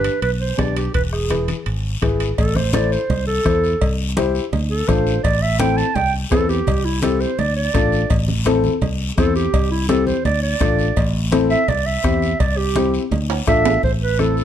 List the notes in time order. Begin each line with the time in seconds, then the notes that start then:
Already playing: D4 G4 B4
0.04 high timbale, short guiro
0.22 B1 B4, high timbale, long guiro
0.41 C5
0.57 B1 D4 G4 B4 D5, bombo low, bombo rim, high conga, high timbale, low timbale, short guiro
0.76 G4, high timbale, short guiro
0.94 E1 B4, bombo low, high timbale, long guiro
1.13 G#4, bombo rim
1.29 E4 G#4 B4, bombo rim, high conga, high timbale, short guiro
1.48 high conga, high timbale, short guiro
1.66 G#1, high timbale, long guiro
2.02 G#1 E4 G#4 B4, bombo low, bombo rim, high conga, high timbale, short guiro
2.20 high timbale, short guiro
2.38 A1 A4, bombo low, cowbell, long guiro
2.56 C5, bombo rim, high conga
2.73 E4 A4 C5 D5, bombo rim, cowbell, high conga, short guiro
2.92 C5, short guiro
3.10 C2, cowbell, high conga, low conga, long guiro
3.27 A4, high conga
3.45 E2 E4 A4 C5, bombo low, bombo rim, cowbell, high conga, short guiro
3.64 short guiro
3.81 C2, bombo low, cowbell, long guiro
4.17 E4 G4 C5, bombo rim, cowbell, high conga, short guiro
4.35 short guiro
4.53 D2, cowbell, high conga, low conga, long guiro
4.71 A4, high conga
4.88 A1 D4 F4 A4 C5, bombo low, bombo rim, cowbell, high conga, short guiro
5.07 short guiro
5.24 A1 D5, bombo low, cowbell, long guiro
5.42 E5
5.59 C4 E4 A4 G5, bombo rim, cowbell, high conga, short guiro
5.77 A5, short guiro
5.95 C2 G5, cowbell, high conga, low conga, long guiro
6.13 high conga
6.31 E2 C4 E4 A4 B4, bombo low, bombo rim, cowbell, high conga, low timbale, short guiro
6.49 G4, short guiro
6.67 C2, bombo low, cowbell, low conga, long guiro
6.85 E4
7.02 C4 E4 G4 A4, bombo rim, cowbell, high conga, short guiro
7.21 C5, short guiro
7.39 D2 D5, cowbell, high conga, low conga, long guiro
7.56 D5, high conga
7.74 A1 D4 F4 A4, bombo low, bombo rim, cowbell, high conga, short guiro
7.92 short guiro
8.10 A1, bombo low, cowbell, long guiro
8.28 high conga
8.45 C4 E4 A4, bombo rim, cowbell, high conga, short guiro
8.64 high conga, short guiro
8.82 C2, cowbell, high conga, low conga, long guiro
9.00 high conga
9.17 E2 C4 E4 A4 C5, bombo low, bombo rim, cowbell, high conga, short guiro
9.36 G4, short guiro
9.54 C2, bombo low, cowbell, long guiro
9.71 E4
9.89 C4 E4 G4 A4, bombo rim, cowbell, high conga, short guiro
10.07 C5, high conga, short guiro
10.25 D2 D5, cowbell, high conga, low conga, long guiro
10.43 D5, high conga
10.60 A1 D4 F4 A4, bombo low, bombo rim, cowbell, high conga, low conga, short guiro
10.79 short guiro
10.96 A1, bombo low, cowbell, long guiro
11.32 C4 E4 A4, bombo rim, cowbell, high conga, short guiro
11.50 E5, short guiro
11.68 C2 D5, cowbell, high conga, low conga, long guiro
11.86 E5, high conga
12.03 E2 C4 E4 G4, bombo low, bombo rim, cowbell, high conga, short guiro
12.22 short guiro
12.40 C2 D5, bombo low, cowbell, low conga, long guiro
12.58 G4
12.76 C4 E4 G4, bombo rim, cowbell, high conga, short guiro
12.94 short guiro
13.11 D2, cowbell, high conga, low conga, long guiro
13.30 high conga, high timbale
13.47 A1 D4 F4 A4 E5, bombo low, bombo rim, cowbell, high conga, short guiro
13.65 low timbale, short guiro
13.83 A1 C5, bombo low, long guiro
14.02 B4
14.19 C4 E4 A4, bombo rim, high conga, short guiro
14.37 short guiro